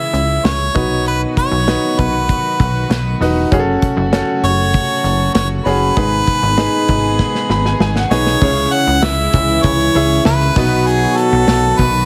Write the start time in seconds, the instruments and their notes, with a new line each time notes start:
Already playing: string section C#3 E3 G#3 E4, upright piano C#3 C#4 E4 G#4, harmonica E5
0.13 analog synth bass C#2, closed hi-hat
0.44 analog synth bass C#2, harmonica C#5, snare, closed hi-hat
0.74 analog synth bass B1, upright piano B2 D#4 F#4 B4, string section D#3 F#3 B3 F#4, kick, closed hi-hat
1.06 harmonica B4, closed hi-hat
1.37 harmonica C#5, kick, closed hi-hat
1.51 analog synth bass B1
1.67 upright piano D#4 F#4 B4, snare, closed hi-hat
1.99 analog synth bass B1, harmonica B4, kick, closed hi-hat
2.29 kick, closed hi-hat
2.60 analog synth bass B1, kick, closed hi-hat
2.90 analog synth bass B1, snare, closed hi-hat
3.20 analog synth bass E1, upright piano D#4 F#4 B4, snare, open hi-hat
3.52 analog synth bass F#1, string section C#3 A3 F#4, upright piano C#4 F#4 G#4, kick, closed hi-hat
3.59 upright piano A4
3.82 kick, closed hi-hat
3.97 analog synth bass F#1
4.12 upright piano C#4 F#4 A4, snare, closed hi-hat
4.43 analog synth bass F#1, harmonica C#5, closed hi-hat
4.74 kick, closed hi-hat
5.04 analog synth bass F#1, closed hi-hat
5.34 analog synth bass F#1, harmonica C#5, snare, closed hi-hat
5.65 analog synth bass F#1, upright piano C#4 F#4 G#4, harmonica B4, snare, open hi-hat
5.97 analog synth bass G#1, upright piano G#2 D#4 G#4 B4, string section D#3 G#3 B3 G#4, kick, closed hi-hat
6.27 kick, closed hi-hat
6.43 analog synth bass G#1
6.58 upright piano D#4 G#4 B4, snare, closed hi-hat
6.88 analog synth bass G#1, kick, closed hi-hat
7.19 kick, snare
7.35 snare
7.49 analog synth bass G#1, upright piano B5, snare
7.65 upright piano G#5, snare
7.80 analog synth bass G#1, upright piano G#5, snare
7.96 upright piano F#5, snare
8.11 analog synth bass B1, upright piano D#4 G#4 B4, harmonica C#5, snare
8.26 snare
8.41 analog synth bass C#2, string section C#3 E3 G#3 E4, french horn section C#3 C#4, upright piano C#3 C#4 E4 G#4 C#5, kick, crash
8.72 harmonica F#5, hi-hat pedal, open hi-hat
8.87 analog synth bass C#2
9.03 analog synth bass C#2, harmonica E5, snare, hi-hat pedal, open hi-hat
9.32 analog synth bass C#2, french horn section E3 E4, kick, hi-hat pedal, open hi-hat
9.48 open hi-hat
9.63 analog synth bass C#2, harmonica C#5, kick, hi-hat pedal, open hi-hat
9.79 hi-hat pedal
9.94 analog synth bass C#2, upright piano C#4 E4 G#4 E5, hi-hat pedal, open hi-hat
10.10 open hi-hat
10.25 analog synth bass C#2, harmonica B4, snare, hi-hat pedal, open hi-hat
10.41 hi-hat pedal
10.56 analog synth bass B1, upright piano B2 B3 D#4 F#4 B4, string section D#3 F#3 B3 F#4, french horn section F#3 F#4, kick, hi-hat pedal, open hi-hat
10.86 harmonica G#4, hi-hat pedal, open hi-hat
11.17 harmonica A4, hi-hat pedal, open hi-hat
11.32 analog synth bass B1
11.48 analog synth bass B1, snare, hi-hat pedal, open hi-hat
11.78 analog synth bass B1, harmonica B4, kick, hi-hat pedal, open hi-hat
11.94 open hi-hat